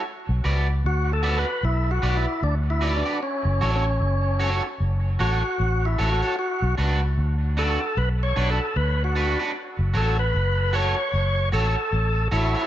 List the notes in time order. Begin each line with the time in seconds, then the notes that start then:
0.29 B1
0.44 C#2 F#4 B4 D5
0.84 D2 F#4
1.13 A4
1.23 F#4 B4 D5
1.38 B4
1.47 muted clean electric guitar stroke
1.63 B1 E4
1.91 F#4
2.02 B1 F#4 B4 D5
2.17 E4
2.43 D2 D4
2.70 E4
2.81 F#4 B4 D5
2.97 D4
3.05 F#4 B4 D5
3.23 C#4
3.45 F#1
3.61 A1 F#4 A4 C#5
3.76 C#4
4.01 F#1
4.39 F#4 A4 C#5
4.64 muted clean electric guitar stroke
4.80 F#1
5.19 A1 F#4 A4 C#5
5.60 A1
5.85 E4
5.98 A1 F#4 A4 C#5
6.12 F#4
6.22 F#4 A4 C#5
6.39 F#4
6.62 B1
6.77 C#2 D4 F#4 B4
7.18 D2
7.57 D4 F#4 A4 B4
7.81 muted clean electric guitar stroke
7.97 B1 B4
8.23 C#5
8.36 B1 D4 F#4 B4
8.50 A4
8.76 D2 B4
9.04 F#4
9.15 D4 F#4 B4
9.39 D4 F#4 B4
9.79 F#1
9.94 A1 F#4 A4 C#5
10.19 B4
10.35 F#1
10.73 F#4 A4 C#5
10.96 muted clean electric guitar stroke
11.13 F#1
11.52 A1 F#4 A4 C#5
11.93 A1
12.31 A1 E4 F#4 A4 C#5
12.54 F#4 A4 C#5